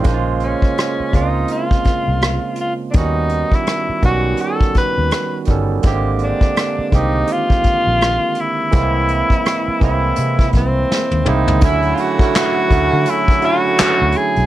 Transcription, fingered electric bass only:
X:1
M:4/4
L:1/16
Q:"Swing 16ths" 1/4=83
K:Bbmix
V:1 name="Fingered electric bass" clef=bass
B,,,3 z3 _D,,2 z3 C,,2 z3 | E,,3 z3 =B,,,2 z3 E,, z2 G,,,2 | A,,,3 z3 C,,2 z3 B,,,2 z3 | C,,3 z3 C,,2 C,2 C,,2 z ^D,, C,, _D,, |
D,,2 z4 D,, D, z4 z D,, z =B,,, |]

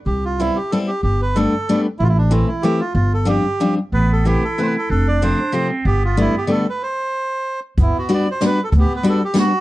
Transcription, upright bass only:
X:1
M:3/4
L:1/8
Q:"Swing" 1/4=188
K:Gmix
V:1 name="Upright bass" clef=bass
C,,4 z2 | G,,,4 z2 | A,,,4 z2 | G,,,4 z2 |
A,,,4 z2 | F,,,4 z2 | G,,,4 z2 | z6 |
[K:G] G,,, z4 z | D,, z4 z |]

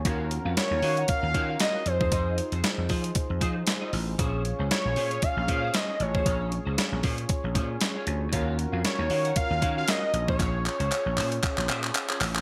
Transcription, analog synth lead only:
X:1
M:4/4
L:1/16
Q:"Swing 16ths" 1/4=116
K:Bbm
V:1 name="Analog synth lead"
z4 d4 f4 e2 c2- | c2 z12 z2 | z4 d4 f4 e2 d2- | d2 z12 z2 |
z4 d4 f3 f e3 d- | d12 z4 |]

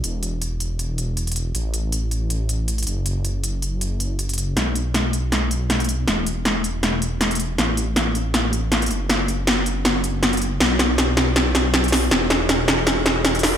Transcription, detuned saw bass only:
X:1
M:4/4
L:1/8
Q:"Swing 16ths" 1/4=159
K:Elyd
V:1 name="Detuned saw bass" clef=bass
E,,,8 | =A,,,6- A,,, F,,,- | F,,,8 | B,,,8 |
E,,,8 | =A,,,6- A,,, F,,,- | F,,,8 | B,,,8 |
E,,,8 |]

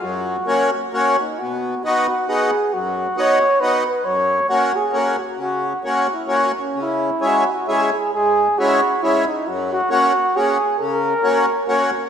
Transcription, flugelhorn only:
X:1
M:3/4
L:1/8
Q:"Swing" 1/4=134
K:F#
V:1 name="Flugelhorn"
F4 z D | [K:B] F2 F2 G2 | F2 c2 B B | c2 F G A F |
F2 z E F C | E2 F F G G | G2 F2 E D | F F F2 G2 |
A4- A z |]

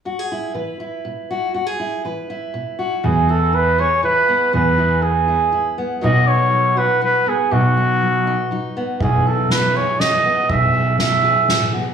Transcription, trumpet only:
X:1
M:3/4
L:1/8
Q:1/4=121
K:E
V:1 name="Trumpet"
z6 | z6 | G A B c B2 | B2 G3 z |
d c2 B B G | F4- F z | G A B c d2 | e2 e3 z |]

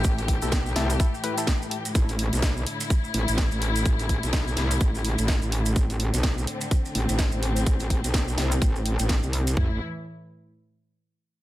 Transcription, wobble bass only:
X:1
M:4/4
L:1/16
Q:"Swing 16ths" 1/4=126
K:Am
V:1 name="Wobble bass" clef=bass
A,,,3 B,,,3 C,,2 z8 | A,,,3 B,,,3 z4 A,,, A,,,2 A,,,3 | A,,,3 B,,,3 C,,2 A,,,3 A,,,2 A,,,3 | A,,,3 B,,,3 z4 A,,, A,,,2 A,,,3 |
A,,,3 B,,,3 C,,2 A,,,3 A,,,2 C,,3 | A,,,2 z12 z2 |]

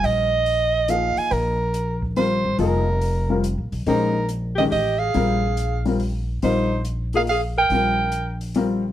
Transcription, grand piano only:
X:1
M:3/4
L:1/8
Q:"Swing" 1/4=141
K:Cphr
V:1 name="Grand piano"
[G,CFB] z3 [F,B,EA]2- | [F,B,EA] z3 [G,CFB]2 | [F,B,EA] z2 [G,CFB] z2 | [A,DGc] z2 [E,A,DG] z2 |
[G,CFB] z2 [G,CFB] z2 | [G,CFB] z2 [F,B,EB] z2 | [G,CFB] z3 [G,CFB] z |]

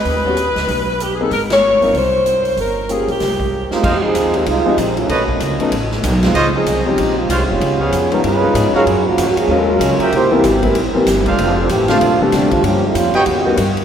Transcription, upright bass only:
X:1
M:4/4
L:1/8
Q:"Swing" 1/4=191
K:Ab
V:1 name="Upright bass" clef=bass
E,,3 =D,, =B,,,4 | A,,,3 G,,, C,,4 | G,,,3 B,,, C,,3 z | [K:Fm] F,,2 E,,2 C,, z B,,,2 |
=B,,,2 ^C,, z =A,,,2 B,,,2 | D,,2 C,,2 B,,,2 (3C,, A,,, F,,, | D,,2 F,,2 G,,2 A,, z | _G,,2 F,, z E,,2 D,, z |
C,,2 A,,,2 B,,, z G,,,2 | F,,,2 =A,,,2 =B,,, z C,,2 | G,,2 F,, z E,,2 G,,2 |]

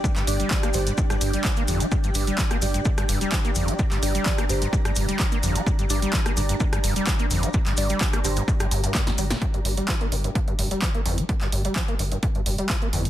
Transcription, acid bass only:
X:1
M:4/4
L:1/16
Q:1/4=128
K:Gm
V:1 name="Acid bass" clef=bass
G,, G,, G,, G, F, B, G,, G,, _A,, G,, G,, G, F, B, F,, G, | G,, G,, G,, G, F, B, G,, G,, _A,, G,, G,, G, F, B, F,, G, | G,, G,, G,, G, F, B, G,, G,, _A,, G,, G,, G, F, B, F,, G, | G,, G,, G,, G, F, B, G,, G,, _A,, G,, G,, G, F, B, F,, G, |
G,, G,, G,, G, F, B, G,, G,, _A,, G,, G,, G,, G,, F,, G, B,, | G,, G,, G,, G, F, B, G,, G,, _A,, G,, G,, G, F, B, F,, G, | G,, G,, G,, G, F, B, G,, G,, _A,, G,, G,, G, F, B, F,, G, |]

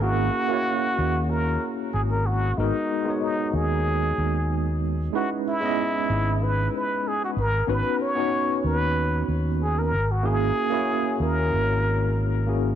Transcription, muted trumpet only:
X:1
M:4/4
L:1/16
Q:1/4=94
K:F#mix
V:1 name="Muted trumpet"
F8 A2 z2 G A F2 | D4 D2 G8 z2 | F2 E6 B2 B2 G F A2 | B2 c4 B4 z2 G A2 F |
G6 A8 z2 |]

